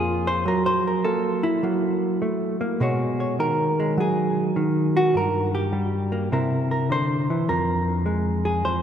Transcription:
Already playing: F2 A#3 C#4 G#4
0.27 C5
0.45 F#3 A#4
0.66 C5
0.87 A#4
1.04 A#3 A4
1.43 E4
1.63 F#3 A#3
2.22 A3
2.61 A#3
2.80 B2 G#3 F#4 C#5
3.20 C#5
3.39 D#3 A#4
3.80 G#3
3.97 F#3 G#4
4.56 D#3
4.97 F#4
5.14 G2 A#4
5.55 G4
5.73 G3
6.12 A#3
6.32 C3 C4 E4 A#4
6.71 A#4
6.90 D3 C5
7.30 E3
7.49 F2 A#4
8.06 G#3
8.45 G#4
8.65 F2 C5

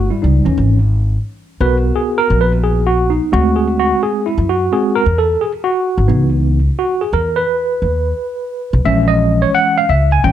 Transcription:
Already playing: A3
0.10 G3 E4
0.22 C#2 G3 D#4
0.45 D#2 E3 C#4
0.58 G#1
1.60 B1 B3 F#4 A#4 B4
1.96 G#4
2.18 A#4
2.30 A#1
2.41 B4
2.63 G#4
2.87 F#4
3.10 D#4
3.32 D2 G#3 C4 F#4
3.56 G#4
3.79 F#4
4.03 G#4
4.26 E4
4.38 F#2
4.49 F#4
4.72 G#3 C4 F#4 G#4
4.95 A#4
5.06 E2
5.18 A4
5.41 G#4
5.64 F#4
5.98 G#1
6.07 C#2 E3 B3 D#4
6.79 F#4
7.01 G#4
7.13 E2 A#4
7.36 B4
7.82 D#2
8.73 B1
8.85 A#1 E3 G#3 C#4 E5
9.08 D#5
9.42 C#5
9.55 F#5
9.78 F5
9.89 C#2 E5
10.12 G#5
10.24 A1 D#3 G3 C#4 G5

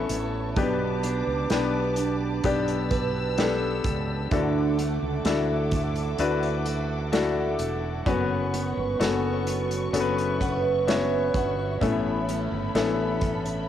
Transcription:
Already playing: A3 B3 C#4 E4 F#4 A4 B4 E5 A5 C#6
0.09 A1 E4, closed hi-hat
0.56 B1 B2 B3 D4 G4 B4 D5 D6, kick, closed hi-hat
1.03 D4, closed hi-hat
1.27 C#2
1.50 B1 B3 D4 G4 B4, snare, closed hi-hat
1.96 D4, closed hi-hat
2.44 B1 B3 D4 G4 D5 E6, kick, closed hi-hat
2.68 closed hi-hat
2.91 B4, kick, closed hi-hat
3.38 B3 D4 G4 A4, snare, closed hi-hat
3.84 C#2 G4, kick, closed hi-hat
4.31 D2 D3 D4 E4 F#4 A4 E5 F#5 D6, kick, closed hi-hat
4.79 A3, closed hi-hat
5.02 C#2
5.25 D2 D4 E4 F#4 A4, snare, closed hi-hat
5.71 A3, kick, closed hi-hat
5.96 closed hi-hat
6.19 D2 D4 E4 F#4 B4, closed hi-hat
6.43 closed hi-hat
6.66 F#4, closed hi-hat
7.12 A3 D4 E4 F#4 A4, snare, closed hi-hat
7.59 E1 E4, closed hi-hat
8.06 F#1 F#2 B3 C#4 F#4 B4 C#5 C#6, kick, closed hi-hat
8.54 B3, closed hi-hat
8.77 G1
9.00 F#1 B3 C#4 F#4 A4, snare, closed hi-hat
9.47 B3, closed hi-hat
9.71 closed hi-hat
9.93 F#1 B3 C#4 F#4 A4 E5, closed hi-hat
10.00 B4
10.18 closed hi-hat
10.41 B4 F#5, kick, closed hi-hat
10.87 B3 C#4 F#4 C#5 E5, snare, closed hi-hat
11.34 G1 F#4 F#5, kick, closed hi-hat
11.81 A1 A2 A3 B3 C#4 E4 A4 B5, kick, closed hi-hat
12.29 C#4, closed hi-hat
12.52 G1
12.75 A1 B3 C#4 E4 A4, snare, closed hi-hat
13.21 C#4, kick, closed hi-hat
13.46 closed hi-hat

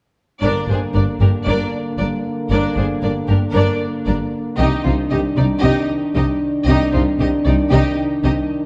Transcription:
0.42 G1 G2 D3 A#3 D4 A#4 D5
0.68 G1 G2 D4 G#4 C5
0.94 G1 G2 D4 A#4 D5
1.20 G1 G2 D4 G4 A#4
1.45 G1 G2 D4 A#4 D5
1.98 G1 G2 D4 A#4 D5
2.50 G1 G2 D4 A#4 D5
2.76 G1 G2 D4 G#4 C5
3.02 G1 G2 D4 A#4 D5
3.27 G1 G2 D4 G4 A#4
3.51 G1 G2 D4 A#4
3.56 D5
4.06 G1 G2 D4 A#4 D5
4.58 C2 C3 D#3 D4 D#4 G4 D#5
4.84 C2 C3 D#4 F4 C5
5.11 C2 C3 D#4 G4 D#5
5.37 C2 C3 D#4 D5
5.60 C2 C3 D#4 G4 D#5
6.15 C2 C3 D#4 G4 D#5
6.67 C2 C3 D#4 G4 D#5
6.93 C2 C3 D#4 F4 C5
7.19 C2 C3 D#4 G4 D#5
7.45 C2 C3 D#4 D5
7.71 C2 C3 D#4 G4 D#5
8.23 C2 C3 D#4 G4 D#5

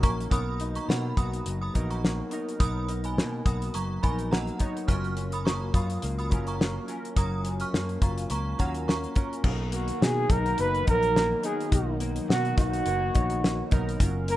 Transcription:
Already playing: D#3 F#3 C#4 D#4 F#4 A#4
0.03 A#1 A#3 A#5 C#6, kick, closed hi-hat
0.20 closed hi-hat
0.30 B1 F#3 B3 D#4 A#4 B5 D#6, kick, closed hi-hat
0.60 D#4, closed hi-hat
0.75 A#5 C#6, closed hi-hat
0.88 B2 A#3 F#5 B5, snare
1.17 B1 F#4 B5 D#6, kick, closed hi-hat
1.33 closed hi-hat
1.46 F#1 F#3, closed hi-hat
1.61 B5 D#6
1.74 A#1 F#3 B3 D#4 A#4, kick, closed hi-hat
1.90 A#5 C#6, closed hi-hat
2.04 A#3, snare
2.31 F#3 B3 D#4 A#4, closed hi-hat
2.49 closed hi-hat
2.59 B1 F#3 B3 D#4 A#4 B5 D#6, kick, closed hi-hat
2.89 D#4, closed hi-hat
3.04 G#5 B5, closed hi-hat
3.18 B2 A#3, snare
3.45 B1 F#4 B5 D#6, kick, closed hi-hat
3.62 closed hi-hat
3.74 F#1 F#3 A#5 C#6, closed hi-hat
4.02 A#1 F#3 B3 D#4 A#4 G#5 B5, kick, closed hi-hat
4.19 closed hi-hat
4.31 A#3 F#5 A#5, snare
4.47 closed hi-hat
4.59 F#3 B3 D#4 C#5, kick, closed hi-hat
4.77 closed hi-hat
4.87 F#1 F#3 C#4 F4 A#4 C#6 F6, kick, closed hi-hat
5.04 closed hi-hat
5.17 C#4, closed hi-hat
5.32 B5 D#6, closed hi-hat
5.45 A#3 A#5 C#6, snare
5.74 F#2 F4 B5 D#6, kick, closed hi-hat
5.90 closed hi-hat
6.02 C#2 A#3, closed hi-hat
6.18 B5 D#6, closed hi-hat
6.30 F#1 F#3 C#4 F4 A#4, kick, closed hi-hat
6.47 A#5 C#6, closed hi-hat
6.60 A#3, snare
6.87 F#3 C#4 F4 A#4, closed hi-hat
7.05 closed hi-hat
7.16 F#1 F#3 C#4 F4 A#4 A#5 D#6, kick, closed hi-hat
7.45 C#4, closed hi-hat
7.60 C#6 F6, closed hi-hat
7.74 F#2 A#3, snare
7.89 closed hi-hat
8.02 F#1 F4 A#5 C#6, kick, closed hi-hat
8.18 closed hi-hat
8.30 C#2 A#3 A#5 C#6, closed hi-hat
8.58 D#2 F#3 C#4 F4 A#4 F#5 A#5, kick, closed hi-hat
8.74 closed hi-hat
8.88 A#3 A#5 C#6, snare
9.04 closed hi-hat
9.15 F#3 C#4 F4 A#4, kick, closed hi-hat
9.33 closed hi-hat
9.43 B1 D#3 F#3 B3 D#4 F#4 A#4, kick, crash
9.72 A#3 F#4, closed hi-hat
9.88 closed hi-hat
10.01 B2 F#4 G#4, snare
10.30 B1 D#4 A#4, kick, closed hi-hat
10.46 closed hi-hat
10.58 F#1 A#3 B4, closed hi-hat
10.75 closed hi-hat
10.86 A#1 F#3 B3 D#4 A#4, kick, closed hi-hat
11.03 closed hi-hat
11.15 A#3, snare
11.43 F#3 B3 D#4 G#4 A#4, closed hi-hat
11.60 closed hi-hat
11.71 B1 F#3 B3 D#4 A#4, kick, closed hi-hat
12.00 A#3, closed hi-hat
12.16 closed hi-hat
12.29 B2 F#4, snare
12.45 closed hi-hat
12.58 B1 D#4 F#4, kick, snare, closed hi-hat
12.73 closed hi-hat
12.86 F#1 A#3, closed hi-hat
13.14 A#1 F#3 B3 D#4 C#5, kick, closed hi-hat
13.30 closed hi-hat
13.43 A#3, snare
13.71 B1 F#3 B3 D#4 A#4, kick, closed hi-hat
13.89 closed hi-hat
14.00 F#1 C#3 F#3 C#4 F4 A#4 F5, kick, closed hi-hat
14.28 A#3 A#4, closed hi-hat

